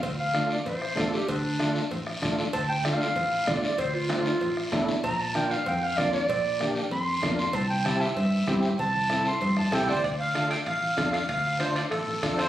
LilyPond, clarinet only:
\new Staff \with { instrumentName = "Clarinet" } { \time 4/4 \key d \minor \tempo 4 = 192 r8 f''4 d''8 c''4 a'8 g'8 | d'2 r2 | a''8 g''8 f''2 d''8 d''8 | c''8 f'2. r8 |
bes''8 a''8 g''8 f''8 g''8 f''8 d''8 d''8~ | d''4. r8 c'''4 r8 c'''8 | a''8 g''8 a''8 e''2 r8 | a''4. c'''4 a''8 g''8 d''8 |
r1 | r1 | }